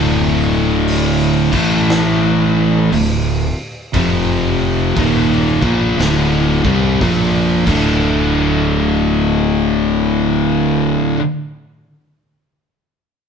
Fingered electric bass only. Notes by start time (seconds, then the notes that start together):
Already playing: D1
1.53 A1
2.91 D1
3.94 F1
4.97 D#1
5.62 A#1
5.97 D1
6.64 C2
7.01 A#1
7.67 D1